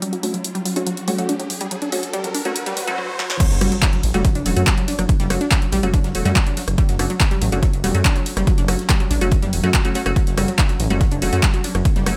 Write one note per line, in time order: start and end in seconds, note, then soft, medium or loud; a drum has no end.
0.00 2.98 F#3 medium
0.00 0.07 G3 loud
0.00 2.98 C#4 medium
0.00 closed hi-hat medium
0.00 riser medium
0.13 0.17 F#3 medium
0.13 closed hi-hat medium
0.23 0.34 A3 medium
0.23 0.34 C#4 medium
0.23 0.30 D4 medium
0.23 0.34 F#4 medium
0.23 open hi-hat loud
0.34 0.37 F#3 medium
0.34 closed hi-hat medium
0.44 closed hi-hat medium
0.55 0.59 G3 loud
0.55 closed hi-hat medium
0.65 0.70 F#3 medium
0.65 open hi-hat loud
0.76 0.83 A3 medium
0.76 0.83 C#4 medium
0.76 0.83 D4 medium
0.76 0.83 F#4 loud
0.76 closed hi-hat medium
0.87 0.89 F#3 medium
0.87 closed hi-hat medium
0.97 closed hi-hat medium
1.08 1.12 G3 loud
1.08 1.17 A3 medium
1.08 1.17 C#4 medium
1.08 1.17 F#4 medium
1.08 open hi-hat loud
1.18 1.23 F#3 medium
1.18 1.29 A3 medium
1.18 1.29 C#4 medium
1.18 1.29 F#4 medium
1.18 closed hi-hat medium
1.29 1.36 D4 medium
1.29 closed hi-hat medium
1.40 1.42 F#3 medium
1.40 closed hi-hat medium
1.50 open hi-hat loud
1.61 1.65 G3 loud
1.61 closed hi-hat medium
1.71 1.76 F#3 medium
1.71 closed hi-hat medium
1.82 1.88 D4 medium
1.82 closed hi-hat medium
1.92 1.95 F#3 medium
1.92 2.03 A3 medium
1.92 2.03 C#4 medium
1.92 2.03 F#4 medium
1.92 open hi-hat loud
2.03 closed hi-hat medium
2.13 2.18 G3 loud
2.13 closed hi-hat medium
2.24 2.28 F#3 medium
2.24 closed hi-hat medium
2.35 2.41 D4 medium
2.35 open hi-hat loud
2.45 2.48 F#3 medium
2.45 2.52 A3 medium
2.45 2.52 C#4 medium
2.45 2.52 F#4 loud
2.45 closed hi-hat medium
2.56 closed hi-hat medium
2.56 swell medium
2.66 2.71 G3 loud
2.66 closed hi-hat medium
2.77 open hi-hat loud
2.87 2.94 F#3 loud
2.87 2.98 A3 medium
2.87 2.98 C#4 medium
2.87 2.98 F#4 medium
2.87 closed hi-hat medium
2.98 3.01 F#3 loud
3.19 3.26 F#3 medium
3.19 snare medium
3.30 snare medium
3.40 12.17 F#3 medium
3.40 3.43 F#3 medium
3.40 12.17 C#4 medium
3.40 kick loud
3.40 closed hi-hat medium
3.40 crash loud
3.40 ride medium
3.40 impact medium
3.51 3.58 F#1 loud
3.51 snare medium
3.51 closed hi-hat medium
3.61 3.69 F#1 medium
3.61 3.66 G3 loud
3.61 3.72 A3 medium
3.61 3.72 C#4 medium
3.61 3.72 F#4 medium
3.61 cross-stick medium
3.61 closed hi-hat medium
3.61 open hi-hat loud
3.61 ride medium
3.72 3.76 F#3 medium
3.72 closed hi-hat medium
3.82 3.89 D4 medium
3.82 kick loud
3.82 snare loud
3.82 clap loud
3.82 closed hi-hat medium
3.82 ride medium
3.92 3.96 F#3 medium
3.92 closed hi-hat soft
3.92 closed hi-hat medium
4.03 4.11 A1 medium
4.03 closed hi-hat medium
4.03 open hi-hat medium
4.03 ride medium
4.14 4.29 F#1 loud
4.14 4.19 G3 loud
4.14 4.21 A3 medium
4.14 4.21 C#4 medium
4.14 4.21 F#4 loud
4.14 closed hi-hat medium
4.25 4.29 F#3 medium
4.25 kick loud
4.25 closed hi-hat medium
4.25 ride medium
4.35 4.43 F#1 medium
4.35 4.42 D4 medium
4.35 closed hi-hat medium
4.35 closed hi-hat soft
4.45 4.53 E1 medium
4.45 4.49 F#3 medium
4.45 4.55 A3 medium
4.45 4.55 C#4 medium
4.45 4.55 F#4 medium
4.45 snare medium
4.45 closed hi-hat medium
4.45 open hi-hat loud
4.45 ride medium
4.56 4.64 F#2 loud
4.56 4.67 A3 medium
4.56 4.67 C#4 medium
4.56 4.67 F#4 medium
4.56 closed hi-hat medium
4.66 4.71 G3 loud
4.66 kick loud
4.66 snare loud
4.66 clap loud
4.66 closed hi-hat medium
4.66 ride medium
4.78 4.82 F#3 medium
4.78 closed hi-hat medium
4.78 closed hi-hat soft
4.88 4.95 D4 medium
4.88 closed hi-hat medium
4.88 open hi-hat loud
4.88 ride medium
4.99 5.06 F#1 medium
4.99 5.01 F#3 medium
4.99 cross-stick medium
4.99 closed hi-hat medium
5.09 kick loud
5.09 closed hi-hat medium
5.09 ride medium
5.20 5.27 F#1 loud
5.20 5.24 G3 loud
5.20 snare medium
5.20 closed hi-hat medium
5.30 5.38 F#1 medium
5.30 5.35 F#3 medium
5.30 5.41 A3 medium
5.30 5.41 C#4 medium
5.30 5.41 F#4 medium
5.30 cross-stick medium
5.30 closed hi-hat medium
5.30 open hi-hat loud
5.30 ride medium
5.41 5.48 D4 medium
5.41 snare soft
5.41 closed hi-hat medium
5.51 5.54 F#3 medium
5.51 kick loud
5.51 snare loud
5.51 clap loud
5.51 closed hi-hat medium
5.51 ride medium
5.62 closed hi-hat medium
5.72 5.80 A1 loud
5.72 5.77 G3 loud
5.72 closed hi-hat medium
5.72 open hi-hat loud
5.72 ride medium
5.83 5.98 F#1 medium
5.83 5.88 F#3 medium
5.83 5.90 A3 medium
5.83 5.90 C#4 medium
5.83 5.90 F#4 loud
5.83 closed hi-hat medium
5.94 6.00 D4 medium
5.94 kick loud
5.94 closed hi-hat medium
5.94 ride medium
6.04 6.12 F#1 medium
6.04 6.07 F#3 medium
6.04 snare medium
6.04 closed hi-hat medium
6.15 6.22 E1 medium
6.15 6.24 A3 medium
6.15 6.24 C#4 medium
6.15 6.24 F#4 medium
6.15 closed hi-hat medium
6.15 open hi-hat loud
6.15 ride medium
6.25 6.33 F#2 loud
6.25 6.30 G3 loud
6.25 6.36 A3 medium
6.25 6.36 C#4 medium
6.25 6.36 F#4 medium
6.25 snare medium
6.25 closed hi-hat medium
6.36 6.40 F#3 medium
6.36 kick loud
6.36 snare loud
6.36 clap loud
6.36 closed hi-hat medium
6.36 ride medium
6.47 6.53 D4 medium
6.47 closed hi-hat medium
6.57 6.60 F#3 medium
6.57 snare medium
6.57 closed hi-hat medium
6.57 open hi-hat loud
6.57 ride medium
6.68 6.75 F#1 medium
6.68 cross-stick medium
6.68 closed hi-hat medium
6.78 6.83 G3 loud
6.78 kick loud
6.78 closed hi-hat medium
6.78 ride medium
6.89 6.96 F#1 loud
6.89 6.93 F#3 medium
6.89 snare soft
6.89 closed hi-hat medium
6.99 7.07 F#1 medium
6.99 7.10 A3 medium
6.99 7.10 C#4 medium
6.99 7.06 D4 medium
6.99 7.10 F#4 medium
6.99 cross-stick medium
6.99 closed hi-hat medium
6.99 open hi-hat loud
6.99 ride medium
7.10 7.13 F#3 medium
7.10 closed hi-hat medium
7.20 kick loud
7.20 snare loud
7.20 clap loud
7.20 closed hi-hat medium
7.20 closed hi-hat loud
7.20 ride medium
7.31 7.36 G3 loud
7.31 closed hi-hat soft
7.31 closed hi-hat medium
7.41 7.49 A1 loud
7.41 7.46 F#3 medium
7.41 closed hi-hat medium
7.41 open hi-hat loud
7.41 ride medium
7.52 7.67 F#1 medium
7.52 7.59 A3 medium
7.52 7.59 C#4 medium
7.52 7.59 D4 medium
7.52 7.59 F#4 loud
7.52 closed hi-hat medium
7.63 7.65 F#3 medium
7.63 kick loud
7.63 closed hi-hat loud
7.63 closed hi-hat medium
7.63 ride medium
7.73 7.81 F#1 medium
7.73 closed hi-hat soft
7.73 closed hi-hat medium
7.84 7.91 E1 medium
7.84 7.88 G3 loud
7.84 7.93 A3 medium
7.84 7.93 C#4 medium
7.84 7.93 F#4 medium
7.84 snare medium
7.84 closed hi-hat medium
7.84 open hi-hat loud
7.84 ride medium
7.94 8.02 F#2 loud
7.94 7.99 F#3 medium
7.94 8.05 A3 medium
7.94 8.05 C#4 medium
7.94 8.05 F#4 loud
7.94 closed hi-hat medium
8.05 8.12 D4 medium
8.05 kick loud
8.05 snare loud
8.05 clap loud
8.05 closed hi-hat medium
8.05 ride medium
8.16 8.18 F#3 medium
8.16 closed hi-hat medium
8.16 closed hi-hat soft
8.26 closed hi-hat medium
8.26 open hi-hat loud
8.26 ride medium
8.37 8.44 F#1 medium
8.37 8.41 G3 loud
8.37 cross-stick medium
8.37 closed hi-hat medium
8.47 8.52 F#3 medium
8.47 kick loud
8.47 closed hi-hat medium
8.47 ride medium
8.57 8.65 F#1 loud
8.57 8.64 D4 medium
8.57 snare medium
8.57 closed hi-hat medium
8.68 8.76 F#1 medium
8.68 8.71 F#3 medium
8.68 8.79 A3 medium
8.68 8.79 C#4 medium
8.68 8.79 F#4 medium
8.68 cross-stick loud
8.68 closed hi-hat medium
8.68 open hi-hat loud
8.68 ride medium
8.79 snare soft
8.79 closed hi-hat medium
8.89 8.94 G3 loud
8.89 kick loud
8.89 snare loud
8.89 clap loud
8.89 closed hi-hat medium
8.89 closed hi-hat loud
8.89 ride medium
9.00 9.05 F#3 medium
9.00 closed hi-hat soft
9.11 9.18 A1 medium
9.11 9.17 D4 medium
9.11 closed hi-hat medium
9.11 open hi-hat loud
9.11 ride medium
9.21 9.36 F#1 medium
9.21 9.24 F#3 medium
9.21 9.28 A3 medium
9.21 9.28 C#4 medium
9.21 9.28 F#4 loud
9.21 closed hi-hat medium
9.31 kick loud
9.31 closed hi-hat medium
9.31 ride medium
9.42 9.50 F#1 medium
9.42 9.47 G3 loud
9.42 snare medium
9.42 closed hi-hat medium
9.53 9.60 E1 medium
9.53 closed hi-hat medium
9.53 open hi-hat loud
9.53 ride medium
9.63 9.71 F#2 loud
9.63 9.70 F#3 loud
9.63 9.74 A3 medium
9.63 9.74 C#4 medium
9.63 9.74 F#4 loud
9.63 snare medium
9.63 closed hi-hat medium
9.74 9.77 F#3 loud
9.74 kick loud
9.74 snare loud
9.74 clap loud
9.74 closed hi-hat medium
9.74 ride medium
9.85 9.94 A3 medium
9.85 9.94 C#4 medium
9.85 9.94 F#4 loud
9.85 closed hi-hat medium
9.94 10.02 F#3 medium
9.94 10.02 A3 medium
9.94 10.02 C#4 medium
9.94 10.02 F#4 loud
9.94 snare medium
9.94 closed hi-hat medium
9.94 open hi-hat loud
9.94 ride medium
10.06 10.13 F#1 medium
10.06 10.12 A3 loud
10.06 10.12 C#4 medium
10.06 10.12 F#4 loud
10.06 cross-stick medium
10.06 closed hi-hat medium
10.16 10.19 F#3 medium
10.16 kick loud
10.16 closed hi-hat medium
10.16 ride medium
10.27 10.34 F#1 loud
10.27 snare soft
10.27 closed hi-hat medium
10.37 10.45 F#1 medium
10.37 10.42 G3 loud
10.37 10.48 A3 medium
10.37 10.48 C#4 medium
10.37 10.48 F#4 medium
10.37 cross-stick loud
10.37 closed hi-hat medium
10.37 open hi-hat loud
10.37 ride medium
10.48 10.52 F#3 medium
10.48 closed hi-hat medium
10.58 10.65 D4 medium
10.58 kick loud
10.58 snare loud
10.58 clap loud
10.58 closed hi-hat medium
10.58 ride medium
10.69 10.72 F#3 medium
10.69 closed hi-hat medium
10.69 closed hi-hat soft
10.80 10.87 A1 loud
10.80 closed hi-hat medium
10.80 open hi-hat loud
10.80 ride medium
10.90 11.05 F#1 medium
10.90 10.95 G3 loud
10.90 10.97 A3 medium
10.90 10.97 C#4 medium
10.90 10.97 F#4 loud
10.90 closed hi-hat soft
11.01 11.05 F#3 medium
11.01 kick loud
11.01 closed hi-hat medium
11.01 ride medium
11.11 11.19 F#1 medium
11.11 11.18 D4 medium
11.11 closed hi-hat soft
11.11 closed hi-hat medium
11.22 11.29 E1 medium
11.22 11.25 F#3 medium
11.22 11.31 A3 medium
11.22 11.31 C#4 medium
11.22 11.31 F#4 medium
11.22 snare medium
11.22 closed hi-hat medium
11.22 open hi-hat loud
11.22 ride medium
11.33 11.40 F#2 loud
11.33 11.43 A3 medium
11.33 11.43 C#4 medium
11.33 11.43 F#4 medium
11.33 closed hi-hat medium
11.43 11.48 G3 loud
11.43 kick loud
11.43 snare loud
11.43 clap loud
11.43 closed hi-hat medium
11.43 ride medium
11.53 11.58 F#3 medium
11.53 closed hi-hat soft
11.64 11.71 D4 medium
11.64 closed hi-hat medium
11.64 open hi-hat loud
11.64 ride medium
11.75 11.82 F#1 medium
11.75 11.78 F#3 medium
11.75 cross-stick medium
11.75 closed hi-hat medium
11.85 kick loud
11.85 closed hi-hat medium
11.85 ride medium
11.96 12.03 F#1 loud
11.96 12.00 G3 loud
11.96 snare medium
11.96 closed hi-hat medium
12.06 12.14 F#1 medium
12.06 12.11 F#3 medium
12.06 12.17 A3 medium
12.06 12.17 C#4 medium
12.06 12.17 F#4 medium
12.06 cross-stick loud
12.06 closed hi-hat medium
12.06 open hi-hat loud
12.06 ride medium